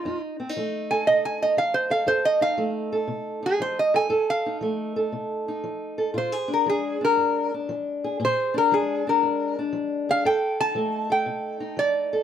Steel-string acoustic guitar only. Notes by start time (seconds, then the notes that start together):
0.05 F2 D#4
0.40 C4
0.49 D#4
0.57 F3 A3
0.91 A4
1.08 C3
1.43 D#4
1.57 F3
1.90 A4
2.06 F2 A4
2.41 D#4
2.57 F3 A3
2.92 A4
3.08 C3
3.43 D#4
3.60 F3
3.94 A4
4.09 F2 A4
4.46 D#4
4.61 F3 A3
4.96 A4
5.12 C3
5.48 D#4
5.64 F3
5.98 A4
6.14 A#2 F4
6.32 G#4
6.48 D4
6.66 F3 G#3
7.01 D4
7.17 F2
7.54 D4
7.69 F3
8.04 G#4
8.20 A#2 G#4
8.54 D4
8.71 F3 G#3
9.07 D4
9.23 F2
9.59 D4
9.73 F3
10.09 G#4
10.25 F2 A4
10.60 D#4
10.75 F3 A3
11.10 A4
11.26 C3
11.60 D#4
11.77 F3
12.13 A4